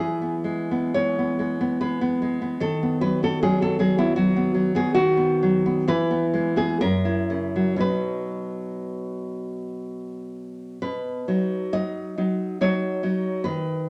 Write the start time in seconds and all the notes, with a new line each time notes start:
Already playing: E3 G#4
0.22 B3
0.44 G#3
0.71 B3
0.94 G#3 C#5
1.19 B3
1.39 G#3
1.61 B3
1.81 G#3 B4
2.01 B3
2.22 G#3
2.42 B3
2.60 D#3 A4
2.83 B3
3.01 F#3 B4
3.23 B3 A4
3.43 F#3 G#4
3.61 B3 A4
3.79 F#3 G#4
3.98 B3 E4
4.16 F#3 F#4
4.36 B3
4.54 F#3
4.75 B3 G#4
4.95 D#3 F#4
5.17 B3
5.43 F#3
5.66 B3
5.88 E3 B4
6.11 B3
6.34 G#3
6.56 B3 G#4
6.81 F#2 A#4
7.05 E4
7.30 C#3
7.56 F#3
7.76 B2 F#3 D#4
7.80 B4
10.82 B2 B4
11.28 F#3 D#4
11.73 F#3 D#4 D#5
12.18 F#3 D#4
12.61 F#3 D#4 C#5
13.03 F#3 D#4
13.44 D#3 B4